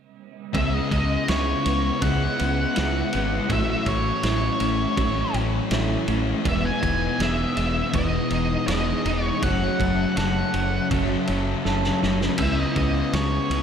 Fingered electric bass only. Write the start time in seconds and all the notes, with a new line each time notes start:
0.55 C#2
0.92 C#2
1.29 C#2
1.66 C#2
2.02 C#2
2.41 C#2
2.78 C#2
3.15 G#1
3.50 A1
3.86 A1
4.24 A1
4.61 A1
4.98 A1
5.34 A1
5.71 A1
6.08 A1
6.45 E1
6.83 E1
7.20 E1
7.57 E1
7.94 E1
8.30 E1
8.68 E1
9.05 E1
9.43 F#1
9.80 F#1
10.17 F#1
10.54 F#1
10.91 F#1
11.29 F#1
11.66 F#1
12.03 F#1
12.39 C#2
12.77 C#2
13.13 C#2
13.50 C#2